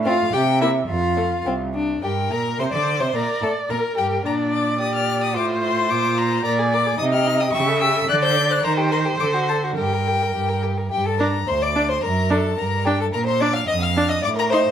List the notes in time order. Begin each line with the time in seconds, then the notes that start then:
Already playing: A2
0.05 C4 F4 F5
0.33 C3 G4 G5
0.61 A#3 E4 E5
0.88 F2 F4 F5
1.17 A3
1.46 C2 C4
1.75 D4
2.03 G2 G4 A#4 G5
2.31 A#2 A#4 A#5
2.59 C3 C5 C6
2.72 D3 D5 D6
3.00 C3 C5 C6
3.14 A#2 A#4 D5 A#5
3.41 A2 A4 A5
3.69 A#2 A#4 A#5
3.98 G2 G4 G5
4.25 A#2 D4 D5 A#5
4.53 D6
4.80 G4 D#6
4.95 F6
5.23 D#6
5.35 A2 F4 C5 D6
5.63 C6
5.90 A#2 F4 D6
6.18 A#5
6.45 A#2 A#4 D5 A#5
6.59 G#4
6.72 A#4 D6
6.87 G#4
6.99 C3 D#4 D#5 D#6
7.13 G4 F6
7.27 D#4
7.40 G4 D#6
7.53 C#3 G4 E5 C#6
7.68 A4
7.81 G4 E6
7.95 A4
8.09 D3 D5 F#6
8.22 C5 G6
8.36 D5
8.50 C5 F#6
8.64 D#3 A#4 C5 A#5
8.78 G4
8.91 A#4 C6
9.06 G4
9.20 D3 A4 D6
9.34 F#4
9.49 A4 A5
9.63 F#4
9.77 G2 G4 A#4 G5
9.93 A#4
10.08 G4
10.22 A#4
10.35 G2 G4
10.49 A#4
10.64 G4
10.78 A#4
10.92 G2 G4 G5
11.06 A4 A5
11.18 D4 A#4 A#5
11.47 D2 C5 C6
11.62 D5 D6
11.75 D4
11.89 C5 C6
12.03 F#2 A#4 A#5
12.30 D4 A4 A5
12.58 G2 A#4 A#5
12.85 D4 G4 G5
13.00 A4 A5
13.13 A#2 A#4 A#5
13.26 C5 C6
13.41 D4 D5 D6
13.53 F5 F6
13.68 F2 D#5 D#6
13.81 F5 F6
13.96 D4
14.09 D#5 D#6
14.22 A2 D5 D6
14.37 A#4 A#5
14.50 D#4 C5 C6